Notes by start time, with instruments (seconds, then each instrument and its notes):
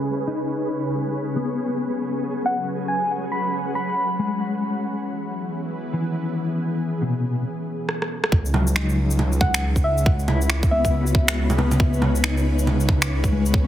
Already playing: ambient pad C#3 C#4 B4, synth texture G#4
0.27 clean electric guitar D#4
1.36 ambient pad F#3, clean electric guitar B3
2.46 soft synth lead F#5
2.75 ambient pad F#5
2.88 soft synth lead G#5
3.32 soft synth lead B5
3.75 soft synth lead B5
4.19 clean electric guitar G#3
4.84 ambient pad E3
5.16 ambient pad B3
5.93 clean electric guitar E3
6.30 ambient pad G#4
7.02 clean electric guitar B2
7.89 cross-stick
8.02 cross-stick
8.24 cross-stick
8.32 detuned saw bass C#2, ambient pad C#3, kick
8.45 shaker
8.54 clean electric guitar F#3, low bongo
8.67 shaker
8.76 clean electric guitar D#4, finger snap
8.89 shaker
9.11 shaker
9.19 low bongo
9.32 ambient pad B4, shaker
9.41 soft synth lead F#5, kick, low bongo
9.49 ambient pad C#5
9.54 finger snap, shaker
9.76 kick, shaker
9.84 soft synth lead E5
9.98 shaker
10.06 kick
10.19 shaker
10.28 clean electric guitar E4, low bongo
10.41 shaker
10.50 finger snap
10.63 kick, shaker
10.71 clean electric guitar B3, soft synth lead E5
10.85 kick, shaker
10.90 clean electric guitar E4
11.04 clean electric guitar F#4, shaker
11.15 kick
11.28 finger snap, shaker
11.50 low bongo, shaker
11.58 clean electric guitar B3, low bongo
11.71 low bongo, shaker
11.80 kick
11.93 shaker
12.02 low bongo
12.15 shaker
12.24 clean electric guitar D#4, finger snap
12.37 shaker
12.59 shaker
12.67 low bongo
12.80 shaker
12.89 kick, low bongo
13.02 finger snap, shaker
13.24 kick, shaker
13.32 clean electric guitar G#3
13.46 shaker
13.50 clean electric guitar B3, kick